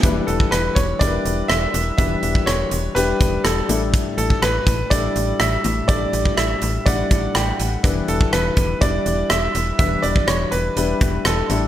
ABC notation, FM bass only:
X:1
M:4/4
L:1/8
Q:1/4=123
K:Edor
V:1 name="FM bass" clef=bass
E,,, E,,, E,,, E,,, E,,, E,,, E,,, E,,, | E,,, E,,, E,,, E,,, E,,, E,,, E,,, A,,,- | A,,, A,,, A,,, A,,, A,,, A,,, A,,, A,,, | A,,, A,,, A,,, A,,, A,,, A,,, A,,, A,,, |
E,,, E,,, E,,, E,,, E,,, E,,, E,,, E,,, | E,,, E,,, E,,, E,,, E,,, E,,, E,,, A,,, |]